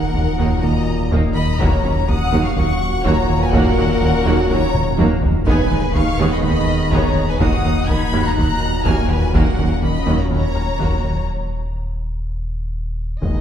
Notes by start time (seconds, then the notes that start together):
Already playing: D#1 A#2 F#3 A#3 D#4 A#4 F#5
0.14 D#2 D#3 F#3 A#3, taiko low
0.38 D#2 D#3 A#3 D#4
0.63 D#2 D#3 F#3 A#3 D#5 A#5, taiko low
0.87 D#2
1.11 D#2 D#3 A#3 D#4, taiko
1.35 D#3 D#5 B5
1.59 D#1 D#2 A#2 F#3 A#3 F#4 C#5 A#5, taiko
1.83 D#2 D#3 F#3 C#4
2.07 D#2 C#3 D#3 A#3 C#4 F#5 D#6, taiko low
2.31 D#2 F#3 A#3 F#4
2.44 F5 C#6
2.56 D#2 D#3 F#3 C#4 F#5 C#6, taiko low
2.81 D#2
3.04 D#2 F#3 A#3 F#4 C#5 A#5, taiko
3.30 D#3
3.41 B4 G#5
3.52 D#2 F#3 A#3 F#4 A#4 F#5, taiko
3.77 D#2 D#3 F#3 C#4
4.01 D#2 C#3 D#3 A#3 C#4, taiko low
4.25 D#2 F#3 A#3 F#4
4.50 D#2 D#3 F#3 C#4 C#5 A#5, taiko low
4.74 D#2, taiko mid
4.97 D#2 F#3 A#3 F#4, taiko high
5.22 D#3, taiko low
5.46 D#2 D#3 G#3 B3 D#4 G#4 B4 G#5, taiko
5.71 D#2 D#3 G#3 D#4
5.95 D#2 D#3 B3 D#4 F5 C#6, taiko low
6.19 D#2 G#3 B3 G#4
6.32 D#5 B5
6.43 D#2 D#3 G#3 D#4 D#5 B5, taiko low
6.67 D#2
6.91 D#2 G#3 B3 G#4 C#5 A#5, taiko
7.15 D#3
7.28 B4 G#5
7.39 D#1 D#2 A#2 D#3 F#3 A#3 F#4 F#5 D#6, taiko
7.64 D#2 D#3 F#3 A#3 D#4
7.88 D#2 D#3 A#3 B5 G#6, taiko low
8.13 D#2 D#3 A#3 F#4, taiko rim
8.26 A#5 F#6
8.37 D#2 D#3 F#3 A#3 D#4 A#5 F#6, taiko low
8.61 D#2, taiko rim
8.85 D#2 D#3 A#3 F#4 G#5 F6, taiko
9.10 D#3 B4 G#5
9.33 D#2 F#3 A#3 C#4 F#4 A#4 F#5, taiko
9.58 D#2 D#3 F#3 C#4
9.82 D#2 C#3 D#3 A#3 C#4 D#5 B5, taiko low
10.06 D#2 F#3 A#3 F#4
10.20 C#5 A#5
10.30 D#2 D#3 F#3 C#4 C#5 A#5, taiko low
10.55 D#2, taiko rim
10.79 D#2 F#3 A#3 F#4, taiko
11.04 D#3
13.22 D#1 D#2 D#3 G#3 B3 D#4 B4 D#5 G#5, taiko